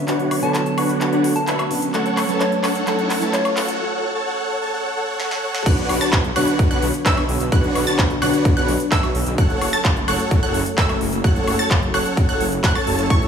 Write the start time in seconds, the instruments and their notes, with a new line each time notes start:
Already playing: analog synth pad B2 D3 F#3 C#5, riser
0.07 clean electric guitar D3 B3 F#4 C#5, supersaw synth D4 F#4 B4 C#5 F#5, clap, closed hi-hat
0.20 closed hi-hat
0.31 open hi-hat, high woodblock
0.42 clean electric guitar D3 B3 A4 C#5, supersaw synth D4 F#4 B4 C#5 A5, soft synth lead A5, closed hi-hat
0.54 soft synth lead A5, clap, closed hi-hat
0.66 soft synth lead A5, closed hi-hat
0.78 supersaw synth D4 F#4 B4 C#5 F#5, open hi-hat, high woodblock
0.89 closed hi-hat
1.01 clap, closed hi-hat
1.13 supersaw synth D4 F#4 B4 C#5 F#5, closed hi-hat
1.24 open hi-hat
1.36 soft synth lead A5, closed hi-hat
1.47 supersaw synth D4 F#4 B4 C#5 E5, soft synth lead A5, clap, closed hi-hat
1.59 closed hi-hat, high woodblock
1.70 clean electric guitar D3 B3 C#4 B4, open hi-hat
1.82 closed hi-hat
1.93 analog synth pad F#2 A4, clean electric guitar F#3 A3 C#4 A4, supersaw synth A4 C#5 F#5, clap, closed hi-hat
2.06 closed hi-hat
2.17 clap, open hi-hat, high woodblock
2.28 clean electric guitar F#3 A3 C#4 B4, supersaw synth A4 C#5 A5, closed hi-hat
2.40 soft synth lead C#5, clap, closed hi-hat
2.52 closed hi-hat
2.64 supersaw synth A4 C#5 F#5, clap, open hi-hat, high woodblock
2.75 closed hi-hat
2.86 clean electric guitar F#3 A3 C#4 A4, supersaw synth A4 C#5 F#5, clap, closed hi-hat
2.99 closed hi-hat
3.10 clap, open hi-hat
3.21 clean electric guitar F#3 A3 C#4 B4, supersaw synth A4 C#5 A5, closed hi-hat
3.33 soft synth lead C#5, clap, closed hi-hat
3.45 closed hi-hat, high woodblock
3.57 supersaw synth A4 C#5 F#5, clap, open hi-hat
3.68 closed hi-hat
3.80 supersaw synth A4 C#5 F#5
4.15 supersaw synth A4 C#5 A5
4.27 supersaw synth A4 C#5 F#5
4.62 supersaw synth A4 C#5 A5
4.73 supersaw synth A4 C#5 F#5
4.96 supersaw synth A4 C#5 F#5
5.20 supersaw synth A4 C#5 F#5, snare
5.31 snare
5.43 supersaw synth A4 C#5 F#5
5.55 snare
5.66 detuned saw bass B1, analog synth pad D3 B3 C#5, supersaw synth D4 F#4 B4 C#5 F#5, synth pluck F#6, kick, closed hi-hat, crash
5.78 closed hi-hat
5.89 detuned saw bass B1, open hi-hat, high woodblock
6.01 supersaw synth D4 F#4 B4 C#5 A5, synth pluck A6, closed hi-hat
6.13 detuned saw bass B1, kick, clap, closed hi-hat
6.24 closed hi-hat
6.36 detuned saw bass B1, supersaw synth D4 F#4 B4 C#5 F#5, synth pluck F#6, open hi-hat, high woodblock
6.48 closed hi-hat
6.59 detuned saw bass B1, kick, closed hi-hat
6.71 detuned saw bass B1, supersaw synth D4 F#4 B4 C#5 F#5, synth pluck F#6, closed hi-hat
6.82 detuned saw bass B1, open hi-hat
6.94 closed hi-hat
7.06 detuned saw bass B1, supersaw synth D4 F#4 B4 C#5 E5, synth pluck E6, kick, clap, closed hi-hat
7.17 closed hi-hat, high woodblock
7.29 detuned saw bass B1, open hi-hat
7.41 detuned saw bass B1, closed hi-hat
7.52 detuned saw bass B1, supersaw synth D4 F#4 B4 C#5 F#5, analog synth pad D4, synth pluck F#6, kick, closed hi-hat
7.64 closed hi-hat
7.75 detuned saw bass B1, open hi-hat, high woodblock
7.87 supersaw synth D4 F#4 B4 C#5 A5, synth pluck A6, closed hi-hat
7.99 detuned saw bass B1, kick, clap, closed hi-hat
8.10 closed hi-hat
8.22 detuned saw bass B1, supersaw synth D4 F#4 B4 C#5 F#5, synth pluck F#6, open hi-hat, high woodblock
8.34 closed hi-hat
8.45 detuned saw bass B1, kick, closed hi-hat
8.57 detuned saw bass B1, supersaw synth D4 F#4 B4 C#5 F#5, synth pluck F#6, closed hi-hat
8.68 detuned saw bass B1, open hi-hat
8.80 closed hi-hat
8.92 detuned saw bass B1, supersaw synth D4 F#4 B4 C#5 E5, synth pluck E6, kick, clap, closed hi-hat
9.03 closed hi-hat, high woodblock
9.15 detuned saw bass B1, open hi-hat
9.26 detuned saw bass B1, closed hi-hat
9.38 detuned saw bass F#1, analog synth pad F#3 A3 C#4, supersaw synth A4 C#5 F#5, synth pluck F#6, kick, closed hi-hat
9.50 closed hi-hat
9.61 detuned saw bass F#1, open hi-hat, high woodblock
9.73 supersaw synth A4 C#5 A5, synth pluck A6, closed hi-hat
9.85 detuned saw bass F#1, kick, clap, closed hi-hat
9.96 closed hi-hat
10.08 detuned saw bass F#1, supersaw synth A4 C#5 F#5, synth pluck F#6, open hi-hat, high woodblock
10.20 closed hi-hat
10.31 detuned saw bass F#1, kick, closed hi-hat
10.43 detuned saw bass F#1, supersaw synth A4 C#5 F#5, synth pluck F#6, closed hi-hat
10.54 detuned saw bass F#1, open hi-hat
10.66 closed hi-hat
10.78 detuned saw bass F#1, supersaw synth A4 C#5 E5, synth pluck E6, kick, clap, closed hi-hat
10.89 closed hi-hat, high woodblock
11.01 detuned saw bass F#1, open hi-hat
11.13 detuned saw bass F#1, closed hi-hat
11.24 detuned saw bass F#1, supersaw synth A4 C#5 F#5, synth pluck F#6, kick, closed hi-hat
11.36 closed hi-hat
11.47 detuned saw bass F#1, open hi-hat, high woodblock
11.59 supersaw synth A4 C#5 A5, synth pluck A6, closed hi-hat
11.71 detuned saw bass F#1, kick, clap, closed hi-hat
11.82 closed hi-hat
11.94 detuned saw bass F#1, supersaw synth A4 C#5 F#5, synth pluck F#6, open hi-hat, high woodblock
12.06 closed hi-hat
12.17 detuned saw bass F#1, kick, closed hi-hat
12.29 detuned saw bass F#1, supersaw synth A4 C#5 F#5, synth pluck F#6, closed hi-hat
12.41 detuned saw bass F#1, open hi-hat
12.52 closed hi-hat
12.64 detuned saw bass F#1, supersaw synth A4 C#5 F#5, synth pluck F#6, kick, clap, closed hi-hat
12.75 supersaw synth A4 C#5 A5, synth pluck A6, closed hi-hat, high woodblock
12.87 detuned saw bass F#1, open hi-hat
12.99 detuned saw bass F#1, closed hi-hat
13.10 detuned saw bass A1, analog synth pad E3 A3, supersaw synth E4 A4 C#5, synth pluck C#6, kick, closed hi-hat
13.22 closed hi-hat